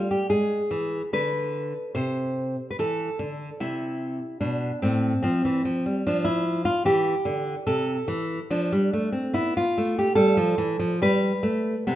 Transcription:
nylon-string guitar
Already playing: G3
0.11 G4
0.30 G#3 G#4
0.71 E3
1.13 D3 B4
1.95 C3 C5
2.71 B4
2.79 E3 A4
3.19 D3
3.60 C3 E4
4.41 B2 D4
4.82 A2 C4
5.23 F3 C4
5.45 E3
5.65 F3
5.86 G3
6.07 F3 D4
6.25 E4
6.65 F4
6.85 E3 G4
7.25 D3
7.67 C3 A4
8.08 E3
8.50 F3 D4
8.72 G3
8.93 A3
9.12 C4
9.33 B3 E4
9.57 F4
9.78 A3
9.99 G4
10.15 G3 A4
10.37 F3
10.58 E3
10.79 F3
11.02 G3 B4
11.43 A3
11.87 C3 B3

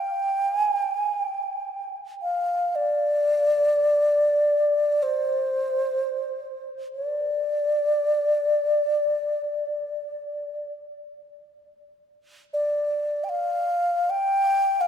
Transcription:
xiao
Already playing: G5
0.54 G#5
0.75 G5
0.98 G#5
1.19 G5
2.22 F5
2.75 D5
5.03 C5
6.95 D5
12.53 D5
13.24 G5
13.29 F5
14.10 G5
14.81 F5

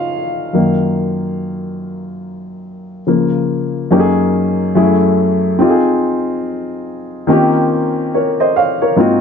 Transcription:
upright piano
Already playing: C#3 F3 A#3 C#4 D#4 F4 C#5 D#5 F5
0.53 F#2 D#3 A#3
3.07 C#3 F3 A#3
3.91 F#2 A#3 C#4 D#4 G4
4.00 G#4
4.75 F#2 A3 C#4 E4 G#4
5.59 C4 D#4 F4
5.63 G4
5.70 G#4
7.27 D#3 A#3 C4 C#4 F4
7.32 G4
8.14 A#4 C#5
8.40 C5 D#5
8.56 C#5 F5
8.82 A#4 C#5
8.96 G#2 A#3 C4 D#4 F4
9.01 F#4

